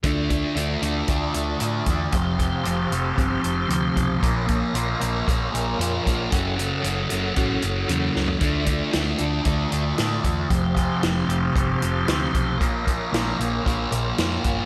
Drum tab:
HH |x-x-x-x-x-x-x-x-|x-x-x-x-x-x-x-x-|x-x-x-x-x-x-x-x-|x-x-x-x-x-x-x---|
SD |----------------|----------------|----------------|--------------o-|
FT |----------------|----------------|----------------|---------------o|
BD |o-o-----o-----o-|o-o-----o-----o-|o-o-----o-----o-|o-------o-------|

HH |x-x-x-x-x-x-x-x-|x-x-x-x-x-x-x-x-|x-x-x-x-x-x-x-x-|
SD |----o-------o---|----o-------o---|----o-------o---|
FT |----------------|----------------|----------------|
BD |o-o-----o-----o-|o-o-----o-----o-|o-o-----o-----o-|